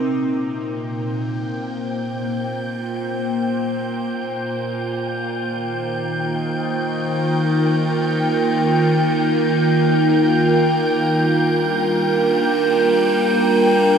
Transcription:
Already playing: A#2 A#3 C4 D#4 F4 A#4 G5 G6
0.51 C5
5.27 D#3
5.50 D#4
6.70 A#4
11.00 G3
11.20 D4

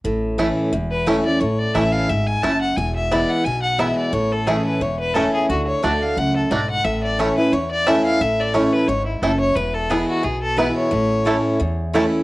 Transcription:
0.04 A1 A2
0.38 E3 A3 C#4 E4
0.72 E1 E2
0.91 B4
1.06 E3 A3 C#4 E4 C#5
1.25 C#4 E4 D5
1.40 A1 A2 C#5
1.59 D5
1.74 A1 E3 A3 C#4 E4 E5
1.92 F5
2.09 G#1 G#2 E5
2.27 G#5
2.43 F#1 F#2 A3 C#4 E4 A5
2.61 F#5
2.77 E1 E2 G#5
2.96 E5
3.11 E3 G#3 B3 E4 D5
3.29 F#5
3.44 B1 B2 G#5
3.62 F#5
3.78 E3 G#3 B3 E4 E5
3.98 D5
4.12 A1 A2 C#5
4.32 A4
4.47 E3 A3 C#4 E4 G#4
4.66 B4
4.80 E1 E2 C#5
5.00 B4
5.14 E3 A3 C#4 E4 A4
5.34 G#4
5.49 D2 D3 F#4
5.67 C#5
5.83 D2 D3 A3 D4 F#4 D5
6.02 F5
6.17 C#2 F#2 F#5
6.36 A4
6.51 B1 G#2 A3 D4 F#4 D5
6.70 F#5
6.84 A1 A2 E5
7.03 D5
7.19 E3 A3 C#4 E4 C#5
7.38 C#4 E4 B4
7.52 E2 C#5
7.71 D5
7.87 E3 A3 C#4 E4 E5
8.05 F5
8.20 A1 A2 E5
8.40 D5
8.54 E3 A3 C#4 E4 C#5
8.73 B4
8.88 G#1 G#2 C#5
9.06 E4
9.22 F#1 F#2 A3 C#4 E4 A4
9.40 C#5
9.56 E1 E2 B4
9.74 A4
9.90 E3 G#3 B3 E4 G#4
10.08 F#4
10.23 B1 B2 G#4
10.42 A4
10.56 E3 G#3 B3 E4 B4
10.77 C#5
10.91 A1 A2
11.25 E3 A3 C#4 E4 C#5 A5
11.60 E2
11.93 E3 A3 C#4 E4 C#5 A5

